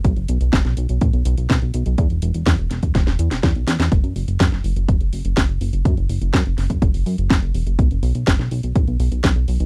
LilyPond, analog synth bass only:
\new Staff \with { instrumentName = "Analog synth bass" } { \clef bass \time 4/4 \key b \dorian \tempo 4 = 124 b,,16 fis,,16 b,,16 b,,16 fis,,16 b,,16 b,,16 b,,16 a,,16 b,,16 b,,16 b,,16 b,,16 b,,16 b,,16 b,,16 | e,16 e,,16 e,,16 e,,16 e,16 e,,16 e,,16 e,,16 e,,16 e,,16 e,16 e,,16 e,16 b,,16 e,16 e,16 | fis,,16 fis,16 fis,,16 fis,,16 fis,16 fis,,16 fis,,16 fis,,16 e,,16 fis,,16 fis,,16 fis,,16 fis,,16 fis,,16 fis,,16 fis,,16 | fis,16 fis,,16 fis,,16 fis,,16 fis,16 fis,,16 fis,,16 fis,,16 fis,,16 fis,,16 fis,16 fis,,16 fis,,16 fis,,16 e,,16 fis,,16 |
b,,16 fis,,16 b,,16 b,,16 fis,,16 b,,16 b,,16 b,,16 a,,16 b,,16 b,,16 b,,16 b,,16 b,,16 b,,16 b,,16 | }